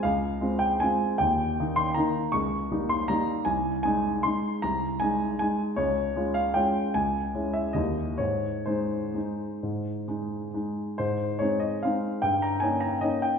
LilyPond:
<<
  \new Staff \with { instrumentName = "Grand piano" } { \time 3/4 \key aes \major \tempo 4 = 152 f''4. g''8 aes''4 | g''4. c'''8 bes''4 | des'''4. c'''8 bes''4 | aes''4 aes''4 c'''4 |
bes''4 aes''4 aes''8 r8 | des''4. f''8 g''4 | aes''4. fes''8 ees''4 | des''4 c''2~ |
c''2 r4 | c''4 des''8 ees''8 f''4 | g''8 bes''8 aes''8 bes''8 ees''8 g''8 | }
  \new Staff \with { instrumentName = "Grand piano" } { \time 3/4 \key aes \major des,4 <aes c' f'>4 <aes c' f'>4 | ees,4 <ees bes ees'>4 <ees bes ees'>4 | des,4 <g bes ees'>4 <g bes ees'>4 | c,4 <aes ees'>4 <aes ees'>4 |
c,4 <aes ees'>4 <aes ees'>4 | des,4 <aes des' f'>4 <aes des' f'>4 | des,4 <aes des' fes'>4 <ees, g bes ees'>4 | aes,4 <aes ees'>4 <aes ees'>4 |
aes,4 <aes ees'>4 <aes ees'>4 | aes,4 <aes c' ees'>4 <aes c' ees'>4 | g,4 <bes des' ees'>4 <bes des' ees'>4 | }
>>